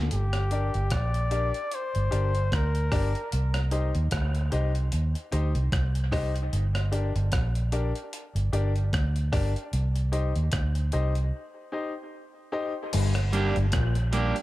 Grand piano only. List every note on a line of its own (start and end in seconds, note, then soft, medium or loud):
0.51 0.70 D4 medium
0.51 0.70 G4 medium
0.51 0.70 A#4 medium
0.51 0.70 D5 medium
1.31 1.50 D4 medium
1.31 1.50 G4 medium
1.31 1.50 A#4 medium
1.31 1.50 D5 medium
2.11 2.30 D4 medium
2.11 2.30 G4 medium
2.11 2.30 A#4 medium
2.11 2.30 D5 medium
2.91 3.10 D4 medium
2.91 3.10 G4 medium
2.91 3.11 A#4 medium
2.91 3.11 D5 loud
3.71 3.90 D#4 medium
3.71 3.90 G4 medium
3.71 3.91 C5 medium
3.71 3.91 D#5 medium
4.51 4.70 D#4 medium
4.51 4.70 G4 medium
4.51 4.71 C5 medium
4.51 4.71 D#5 medium
5.32 5.51 D#4 medium
5.32 5.51 G4 medium
5.32 5.51 C5 medium
5.32 5.51 D#5 medium
6.11 6.30 D#4 medium
6.11 6.31 G4 medium
6.11 6.31 C5 medium
6.11 6.31 D#5 loud
6.92 7.11 D4 medium
6.92 7.11 G4 medium
6.92 7.11 A#4 medium
6.92 7.11 D5 medium
7.72 7.91 D4 medium
7.72 7.91 G4 medium
7.72 7.91 A#4 medium
7.72 7.92 D5 medium
8.53 8.71 D4 medium
8.53 8.71 G4 medium
8.53 8.72 A#4 medium
8.53 8.72 D5 medium
9.32 9.51 D4 loud
9.32 9.51 G4 medium
9.32 9.52 A#4 medium
9.32 9.52 D5 loud
10.12 10.31 D#4 medium
10.12 10.31 G4 medium
10.12 10.31 C5 medium
10.12 10.31 D#5 medium
10.93 11.11 D#4 medium
10.93 11.11 G4 medium
10.93 11.12 C5 medium
10.93 11.12 D#5 medium
11.72 11.91 D#4 medium
11.72 11.91 G4 medium
11.72 11.91 C5 medium
11.72 11.92 D#5 medium
12.52 12.71 D#4 medium
12.52 12.71 G4 medium
12.52 12.71 C5 medium
12.52 12.72 D#5 loud